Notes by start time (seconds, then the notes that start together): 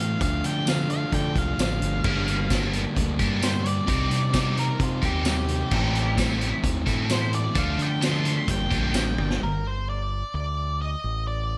Already playing: A2 E3 E4
0.00 A3 C4 F5
0.20 D2 D3 F3 A3 D4 F5, kick, closed hi-hat
0.44 D3 F3 A3 D4 G5, closed hi-hat
0.66 D3 F3 A3 D4 F5, snare, closed hi-hat, tambourine
0.88 F3 A3 D4 F5, closed hi-hat
1.12 D3 G5, kick, closed hi-hat
1.35 C2 F5, kick, closed hi-hat
1.57 A1 D3 F3 A3 D4, snare, closed hi-hat, tambourine
1.62 F5
1.80 G1 F3 A3 D4, closed hi-hat
2.04 G1 G2 D3 G3 A#3 D4 G4, kick, crash
2.27 G3 A#3 D4, closed hi-hat
2.49 D3 G3 A#3 D4 G4, kick, snare, closed hi-hat, tambourine
2.73 G3 A#3 D4, closed hi-hat
2.97 D2, kick, closed hi-hat
3.19 G2 A#3 D4 G4, kick, closed hi-hat
3.41 G2 D3 G3 A#3 D4 C5, snare, closed hi-hat, tambourine
3.63 G3 A#3 D4 D5, closed hi-hat
3.86 C2 C3 G3 C4 D#4 G4, kick, closed hi-hat
4.09 C3 G3 C4 D#4, closed hi-hat
4.32 C3 G3 C4 D#4 G4, kick, snare, closed hi-hat, tambourine
4.55 G3 C4 D#4, closed hi-hat
4.59 A#4
4.80 C3 F4, kick, closed hi-hat
5.02 D#2 G3 C4 D#4 G4, kick, closed hi-hat
5.24 C3 G3 C4 D#4 G4, snare, closed hi-hat, tambourine
5.47 G3 C4 D#4, closed hi-hat
5.69 A1 A2 E3 A3 C4 E4 A4, kick, crash
5.92 A3 C4 E4, closed hi-hat
6.15 E3 A3 C4 E4 A4, kick, snare, closed hi-hat, tambourine
6.39 A3 C4 E4, closed hi-hat
6.64 D#2, kick, closed hi-hat
6.86 A2 E3 C4 E4 A4, kick, closed hi-hat
7.08 A2 E3 A3 C4 E4, snare, closed hi-hat, tambourine
7.13 C5
7.32 A3 C4 E4 D5, closed hi-hat
7.54 D2 D3 F3 A3 D4 A4, kick, closed hi-hat
7.58 F5
7.78 D3 F3 A3 D4, closed hi-hat
7.83 G5
8.00 D3 F3 A3 D4 A4, snare, closed hi-hat, tambourine
8.05 C6
8.25 F3 A3 D4, closed hi-hat
8.47 G1 G2 D3 G3 A#3 D4 G5, kick, closed hi-hat
8.71 A#1 A#3 D4 G4, kick, closed hi-hat
8.93 A1 G2 D3 G3 A#3 D4, snare, closed hi-hat, tambourine
9.17 G1 G3 A#3 D4, high tom
9.30 snare
9.42 G1 A#4
9.67 C5
9.90 D5
10.34 D2 D5
10.82 D#5
11.04 A1
11.27 D5